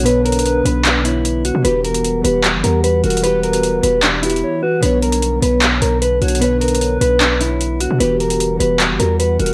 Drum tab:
HH |x-----x-x-x-x-----x-----x-----x-----x-----x-----|x-----x--x--x-----x-----x-----x-----x-----x-x-x-|x-----x--x--x-----x-----x-----x-x-x-------------|x-----x--x--x-----x-----x-----x-----x-----x-x-x-|
CP |------------------------x-----------------------|------------------------x-----------------------|------------------------x-----------------------|------------------------x-----------------------|

HH |x-----x-x-x-x-----x-----x-----x-----x-----x-----|x-----x--x--x-----x-----x-----x-----x-----x-x---|
CP |------------------------x-----------------------|------------------------x-----------------------|